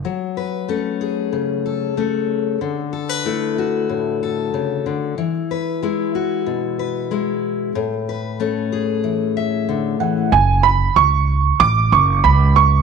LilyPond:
<<
  \new Staff \with { instrumentName = "Upright piano" } { \time 4/4 \key fis \minor \tempo 4 = 93 r1 | r1 | r1 | r2. r8 fis''8 |
gis''8 b''8 cis'''4 d'''8 cis'''8 b''8 cis'''8 | }
  \new Staff \with { instrumentName = "Steel-string acoustic guitar" } { \time 4/4 \key fis \minor << { r8 b'8 cis'8 gis'4 a'8 cis'4 | r8 a'16 b'16 e'8 fis'4 a'4. | r8 b'8 e'8 fis'4 b'8 e'4 | r8 b'8 cis'8 gis'4 e''4. |
r1 | } \\ { fis4 a4 cis4 a4 | d4 a4 a,4 cis8 d8 | e4 gis4 b,4 gis4 | a,4 a4 e4 d8 e8 |
r1 | } >> }
  \new Staff \with { instrumentName = "Upright bass" } { \clef bass \time 4/4 \key fis \minor r1 | r1 | r1 | r1 |
fis,,4 cis,4 a,,8 fis,,8 cis,4 | }
>>